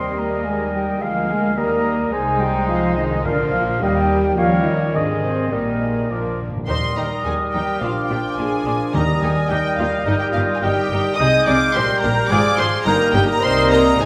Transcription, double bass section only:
0.00 1.01 D#2 soft
1.01 1.55 D2 medium
1.56 2.12 D#2 medium
2.12 3.22 C2 medium
3.25 3.81 A#1 medium
3.81 4.36 D#2 medium
4.38 4.94 D#2 medium
4.95 5.53 G#1 medium
5.53 6.10 A#1 medium
6.11 6.48 A#1 soft
6.69 6.77 D#2 medium
6.97 7.05 D#2 medium
7.26 7.34 D#2 medium
7.54 7.62 D#2 medium
7.81 7.89 A#1 medium
8.09 8.17 A#1 medium
8.37 8.45 A#1 medium
8.66 8.74 A#1 medium
8.94 9.02 D#2 medium
9.22 9.30 D#2 medium
9.50 9.58 D#2 medium
9.78 9.86 D#2 medium
10.06 10.14 G1 medium
10.35 10.43 G1 medium
10.63 10.71 G1 medium
10.90 10.98 G1 medium
11.20 11.28 C2 medium
11.47 11.55 C2 medium
11.75 11.83 A#1 medium
12.03 12.11 A#1 medium
12.31 12.39 G#1 medium
12.59 12.67 G#1 medium
12.86 12.94 G1 medium
13.15 13.23 G1 medium
13.44 13.96 C2 medium
14.00 14.05 G#1 medium

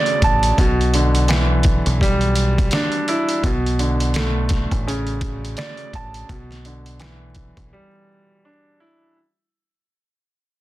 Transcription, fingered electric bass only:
0.22 0.50 A1 medium
0.58 1.82 B1 loud
1.86 2.68 B1 medium
3.44 4.68 B1 loud
4.71 5.54 A1 medium
5.93 6.22 A1 medium
6.29 7.53 B1 loud
7.57 7.71 B1 medium

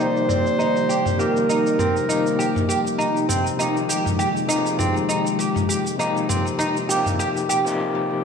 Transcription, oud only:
0.00 0.28 D#4 medium
0.29 0.45 C4 medium
0.59 0.75 D#4 medium
0.89 1.05 G4 medium
1.19 1.29 G4 medium
1.49 1.78 D#4 medium
1.79 1.95 C4 medium
2.09 2.25 D#4 medium
2.39 2.55 G4 medium
2.69 2.78 G4 medium
2.99 3.28 D#4 medium
3.29 3.45 C4 medium
3.59 3.75 D#4 medium
3.89 4.05 G4 medium
4.19 4.29 G4 medium
4.49 4.78 D#4 medium
4.79 4.95 C4 medium
5.09 5.25 D#4 medium
5.39 5.55 G4 medium
5.69 5.79 G4 medium
5.99 6.28 D#4 medium
6.29 6.45 C4 medium
6.59 6.75 D#4 medium
6.89 7.05 G4 medium
7.19 7.29 G4 medium
7.49 7.64 G4 medium

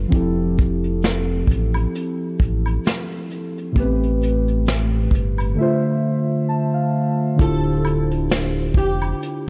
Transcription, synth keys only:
0.08 3.69 F3 medium
0.08 3.70 C4 medium
0.08 3.71 E4 medium
0.14 3.72 G4 medium
0.14 3.73 A4 medium
3.72 5.52 A2 medium
3.72 5.53 A3 medium
3.72 3.83 B3 medium
3.77 5.55 G4 medium
3.77 5.56 B4 medium
3.82 5.57 C4 medium
5.54 7.34 D3 medium
5.54 7.35 A3 medium
5.54 7.36 E5 medium
5.60 7.37 F4 medium
5.60 7.38 C5 medium
6.49 6.73 A5 medium
6.74 7.35 F5 medium
7.36 9.49 D3 medium
7.36 9.49 D4 medium
7.36 9.49 E4 medium
7.40 9.49 F4 medium
7.40 9.49 G4 medium
7.40 9.49 C5 medium

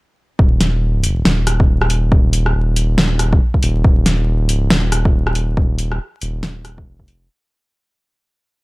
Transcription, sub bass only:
0.39 1.24 D#1 medium
1.25 2.54 D#1 loud
2.55 3.40 D#1 medium
3.63 3.83 D#1 loud
3.84 4.44 D#1 loud
4.44 4.69 D1 loud
4.70 5.99 D#1 loud
6.22 6.85 D#1 loud
6.86 7.28 F1 loud

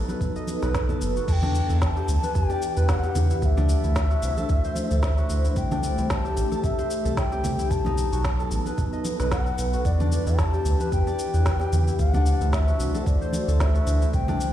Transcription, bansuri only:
1.28 1.78 G5 loud
1.28 1.33 A5 medium
1.82 2.37 A5 loud
1.82 1.87 B5 loud
2.35 2.90 G5 loud
2.89 3.41 F#5 loud
3.42 4.99 E5 loud
3.42 3.46 F#5 medium
5.03 5.53 E5 medium
5.56 6.11 G5 loud
6.10 6.63 A5 loud
6.63 7.13 E5 medium
7.17 7.72 G5 medium
7.70 9.04 A5 medium
9.31 9.81 F#5 loud
9.85 10.40 D5 loud
10.38 10.91 A5 loud
10.92 11.95 G5 loud
11.99 12.49 F#5 loud
12.53 13.03 E5 medium
13.06 13.61 D5 medium
13.60 14.13 E5 medium
14.14 14.53 G5 loud

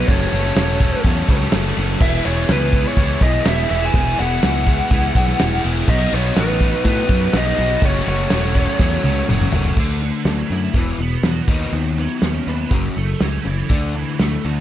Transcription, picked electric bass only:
0.09 0.26 F#1 medium
0.33 0.50 F#1 medium
0.56 0.92 E1 loud
1.04 1.22 E2 medium
1.29 1.47 C#2 medium
1.53 1.71 F#1 medium
1.77 1.95 F#1 medium
2.01 2.19 E1 loud
2.26 2.43 E1 medium
2.50 2.85 C#2 loud
2.97 3.15 C#2 medium
3.21 3.39 B1 medium
3.46 3.64 E1 medium
3.71 3.88 E1 medium
3.94 4.12 E1 loud
4.20 4.37 E1 loud
4.44 4.79 C#2 medium
4.90 5.09 C#2 loud
5.15 5.33 B1 medium
5.41 5.59 E1 medium
5.65 5.82 E1 medium
5.88 6.06 B1 loud
6.13 6.30 B1 medium
6.37 6.72 A1 medium
6.84 7.03 A2 loud
7.09 7.27 F#2 medium
7.34 7.52 B1 medium
7.58 7.76 B1 medium
7.82 8.00 F#1 medium
8.07 8.25 F#1 loud
8.31 8.67 E1 medium
8.79 8.97 E2 loud
9.04 9.22 C#2 medium
9.29 9.47 F#1 medium
9.53 9.71 F#1 medium
9.77 10.10 D2 medium
10.25 10.42 D2 medium
10.50 10.67 F#2 medium
10.74 10.91 E1 medium
10.99 11.16 E1 medium
11.23 11.40 E2 medium
11.48 11.65 D#2 medium
11.73 12.06 D#2 medium
12.22 12.39 D#2 medium
12.47 12.64 D#2 medium
12.71 12.88 F#1 loud
12.97 13.13 F#1 medium
13.21 13.38 C#2 medium
13.45 13.62 F#1 medium
13.70 14.03 D2 medium
14.20 14.37 D2 medium
14.45 14.60 D2 medium

